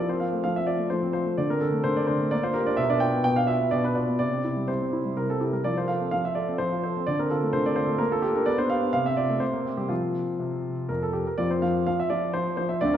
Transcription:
0.00 0.43 F3 soft
0.09 0.28 C4 soft
0.09 0.21 C5 soft
0.20 0.40 F4 soft
0.20 0.42 F5 soft
0.33 0.52 A3 soft
0.44 0.89 F3 soft
0.44 0.56 F5 medium
0.56 0.75 C4 soft
0.56 0.68 E5 medium
0.67 0.87 F4 soft
0.67 0.91 D5 medium
0.79 0.98 A3 soft
0.90 1.37 F3 soft
0.90 1.12 C5 medium
1.03 1.22 C4 soft
1.13 1.34 F4 soft
1.13 1.38 C5 medium
1.26 1.38 A3 soft
1.38 1.83 D3 soft
1.38 1.50 D5 medium
1.50 1.69 C4 soft
1.50 1.62 A#4 medium
1.60 1.81 D4 soft
1.60 1.85 A4 soft
1.72 1.92 A3 soft
1.84 2.30 D3 soft
1.84 1.96 C5 medium
1.96 2.16 C4 soft
1.96 2.09 D5 medium
2.07 2.27 D4 soft
2.07 2.31 C5 medium
2.20 2.32 A3 soft
2.31 2.77 A#3 soft
2.31 2.44 D5 medium
2.43 2.62 F4 soft
2.43 2.55 C5 medium
2.54 2.74 G4 soft
2.54 2.66 A#4 medium
2.66 2.78 D4 soft
2.66 2.79 D5 medium
2.77 3.23 B2 soft
2.77 2.89 E5 medium
2.90 3.09 D4 soft
2.90 3.02 D5 medium
3.00 3.20 F4 soft
3.00 3.23 G5 medium
3.14 3.33 B3 soft
3.24 3.71 B2 soft
3.24 3.37 G5 medium
3.36 3.56 D4 soft
3.36 3.49 F5 medium
3.47 3.67 F4 soft
3.47 3.72 E5 medium
3.60 3.79 B3 soft
3.71 4.19 B2 soft
3.71 3.84 D5 medium
3.83 4.03 D4 soft
3.83 3.96 B4 medium
3.95 4.16 F4 soft
3.95 4.17 D5 medium
4.08 4.20 B3 soft
4.19 4.67 C3 soft
4.19 4.68 D5 medium
4.32 4.52 C4 soft
4.44 4.64 E4 soft
4.57 4.76 G3 soft
4.68 5.16 C3 soft
4.68 5.16 C5 soft
4.81 5.00 C4 soft
4.93 5.12 E4 soft
5.05 5.24 G3 soft
5.17 5.64 C3 soft
5.17 5.29 A#4 soft
5.29 5.49 C4 soft
5.29 5.41 A4 soft
5.40 5.60 E4 soft
5.40 5.53 G4 soft
5.53 5.65 G3 soft
5.53 5.65 A#4 soft
5.64 6.11 F3 soft
5.64 5.77 D5 medium
5.77 5.96 F4 soft
5.77 5.89 C5 soft
5.88 6.08 A4 soft
5.88 6.10 F5 medium
6.01 6.20 C4 soft
6.11 6.58 F3 soft
6.11 6.24 F5 medium
6.25 6.44 F4 soft
6.25 6.37 E5 medium
6.35 6.55 A4 soft
6.35 6.59 D5 medium
6.49 6.67 C4 soft
6.58 7.05 F3 soft
6.58 6.82 C5 medium
6.72 6.91 F4 soft
6.83 7.03 A4 soft
6.83 7.07 C5 medium
6.97 7.08 C4 soft
7.07 7.52 D3 soft
7.07 7.19 D5 medium
7.19 7.38 C4 soft
7.19 7.31 A#4 medium
7.30 7.50 F4 soft
7.30 7.54 A4 soft
7.43 7.61 A3 soft
7.53 7.99 D3 soft
7.53 7.65 C5 medium
7.66 7.84 C4 soft
7.66 7.77 D5 medium
7.76 7.95 F4 soft
7.76 7.99 C5 medium
7.88 8.00 A3 soft
7.98 8.45 A#3 soft
7.98 8.11 A#4 medium
8.11 8.30 F4 soft
8.11 8.23 A4 medium
8.22 8.34 G4 medium
8.35 8.47 D4 soft
8.35 8.47 A#4 medium
8.46 8.92 B3 soft
8.46 8.58 D5 medium
8.58 8.77 D4 soft
8.58 8.70 C5 medium
8.70 8.89 G4 soft
8.70 8.91 F5 medium
8.82 8.94 D4 soft
8.93 9.39 C3 soft
8.93 9.05 F5 medium
9.05 9.25 C4 soft
9.05 9.18 E5 medium
9.17 9.37 F4 soft
9.17 9.41 D5 medium
9.29 9.42 A3 soft
9.40 9.88 C3 soft
9.40 9.77 C5 medium
9.53 9.73 A#3 soft
9.65 9.85 C4 soft
9.77 9.90 G3 soft
9.77 9.90 G4 soft
9.89 10.25 F3 soft
9.89 10.30 C4 soft
9.89 10.89 F4 soft
10.39 10.74 C3 soft
10.89 11.24 F2 soft
10.89 11.02 A#4 medium
11.03 11.15 A4 soft
11.13 11.26 G4 soft
11.27 11.39 A#4 soft
11.38 11.62 F2 soft
11.38 11.61 F3 soft
11.38 12.77 C4 soft
11.38 12.77 F4 soft
11.38 11.51 D5 medium
11.51 11.63 C5 soft
11.62 11.86 F3 soft
11.62 11.85 F5 medium
11.87 12.09 F3 soft
11.87 11.99 F5 medium
12.00 12.11 E5 medium
12.10 12.33 F3 soft
12.10 12.34 D5 medium
12.33 12.56 F3 soft
12.33 12.56 C5 medium
12.57 12.81 F3 soft
12.57 12.69 C5 medium
12.69 12.81 E5 soft
12.81 12.97 D2 soft
12.81 12.97 D3 soft
12.81 12.97 C4 soft
12.81 12.97 F4 soft
12.81 12.93 D5 medium

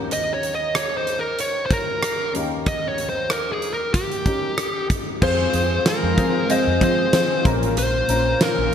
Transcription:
0.00 2.31 D#2 medium
0.00 2.31 D#3 medium
0.00 2.30 C#4 medium
0.00 2.31 D#4 medium
0.00 2.31 G4 medium
0.00 2.31 A#4 medium
0.11 0.32 D#5 medium
0.11 closed hi-hat medium
0.34 0.55 C#5 medium
0.43 closed hi-hat medium
0.55 0.76 D#5 medium
0.75 0.97 C#5 medium
0.75 cross-stick loud
0.75 closed hi-hat medium
0.97 1.19 C5 medium
1.07 closed hi-hat soft
1.19 1.38 A#4 medium
1.39 1.66 C#5 medium
1.39 closed hi-hat medium
1.66 1.72 C5 medium
1.71 2.31 A#4 medium
1.71 kick medium
1.71 closed hi-hat medium
2.03 cross-stick loud
2.03 closed hi-hat medium
2.34 4.86 D#2 medium
2.34 4.86 D#3 medium
2.34 4.22 C#4 medium
2.34 4.22 D#4 medium
2.34 4.23 G4 medium
2.34 4.23 A#4 medium
2.34 closed hi-hat medium
2.66 2.87 D#5 loud
2.66 kick loud
2.66 closed hi-hat medium
2.88 3.09 C#5 medium
2.98 closed hi-hat medium
3.09 3.31 C5 medium
3.30 3.50 A#4 medium
3.30 cross-stick loud
3.30 closed hi-hat medium
3.52 3.73 G#4 medium
3.62 closed hi-hat medium
3.73 3.94 A#4 medium
3.94 4.86 G4 medium
3.94 kick medium
3.94 closed hi-hat medium
4.12 closed hi-hat medium
4.26 5.22 C#4 soft
4.26 5.22 D#4 soft
4.26 5.22 G4 soft
4.26 5.22 A#4 medium
4.26 kick medium
4.26 closed hi-hat medium
4.58 cross-stick loud
4.58 closed hi-hat medium
4.90 kick medium
4.90 closed hi-hat medium
5.22 5.46 F2 loud
5.22 7.43 G#3 medium
5.22 5.44 C4 medium
5.22 7.43 C4 medium
5.22 5.44 F4 medium
5.22 7.43 F4 medium
5.22 5.44 G#4 medium
5.22 5.45 C5 loud
5.22 5.88 C5 loud
5.22 kick loud
5.22 crash medium
5.54 5.78 F2 medium
5.54 5.76 C4 medium
5.54 5.76 F4 medium
5.54 5.76 G#4 medium
5.54 5.76 C5 medium
5.54 closed hi-hat medium
5.85 6.08 C4 medium
5.85 6.08 F4 medium
5.85 6.08 G#4 medium
5.85 6.52 A#4 medium
5.85 6.08 C5 medium
5.85 snare loud
5.85 closed hi-hat medium
6.03 6.14 F2 loud
6.17 6.42 F3 medium
6.17 6.40 C4 medium
6.17 6.40 F4 medium
6.17 6.40 G#4 medium
6.17 6.40 C5 medium
6.17 kick medium
6.17 closed hi-hat medium
6.49 6.64 F3 medium
6.49 6.72 C4 medium
6.49 6.64 C4 medium
6.49 6.72 F4 medium
6.49 6.64 G#4 medium
6.49 6.72 G#4 medium
6.49 6.80 C5 loud
6.49 6.72 D#5 loud
6.49 closed hi-hat medium
6.67 6.78 F2 medium
6.81 7.05 F3 medium
6.81 6.96 F3 medium
6.81 7.04 C4 medium
6.81 6.96 C4 medium
6.81 7.04 F4 medium
6.81 6.96 G#4 medium
6.81 7.04 G#4 medium
6.81 7.04 C5 medium
6.81 7.42 C5 medium
6.81 kick medium
6.81 closed hi-hat medium
7.13 7.27 F3 medium
7.13 7.28 F3 medium
7.13 7.35 C4 medium
7.13 7.28 C4 loud
7.13 7.36 F4 medium
7.13 7.28 G#4 loud
7.13 7.36 G#4 medium
7.13 7.36 C5 medium
7.13 snare loud
7.13 closed hi-hat medium
7.45 7.58 A#1 medium
7.45 8.37 A#2 medium
7.45 7.72 F3 medium
7.45 7.98 A#3 medium
7.45 8.74 A#3 medium
7.45 7.72 C#4 medium
7.45 7.98 C#4 medium
7.45 8.74 F4 medium
7.45 7.98 F4 medium
7.45 7.72 A#4 loud
7.45 7.98 A#4 medium
7.45 kick loud
7.45 closed hi-hat medium
7.62 7.73 A1 medium
7.62 closed hi-hat soft
7.77 8.01 A#1 loud
7.77 8.44 C5 medium
7.77 closed hi-hat medium
8.09 8.33 A#1 medium
8.09 8.31 A#3 medium
8.09 8.31 C#4 medium
8.09 8.32 F4 medium
8.09 8.32 A#4 medium
8.09 closed hi-hat medium
8.41 8.63 A#3 medium
8.41 8.63 C#4 medium
8.41 8.64 F4 medium
8.41 8.64 A#4 medium
8.41 8.74 A#4 medium
8.41 snare loud
8.41 closed hi-hat medium
8.58 8.69 A#1 medium

